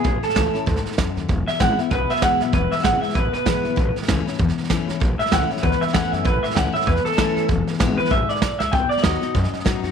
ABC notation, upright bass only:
X:1
M:4/4
L:1/8
Q:"Swing" 1/4=194
K:E
V:1 name="Upright bass" clef=bass
A,,, z C,, z =D,, z E,, ^D,, | E,,, z G,,, z B,,, z =D,, B,,, | E,,, z G,,, z A,,, z B,,, B,,, | A,,, z C,, z E,, z F,, E,, |
A,,, z C,, z =D,, z E,, F,, | A,,, z C,, z E,, z F,, E,, | E,,, z G,,, z A,,, z B,,, C,, | B,,, z D,, z F,, z A,, F,, |]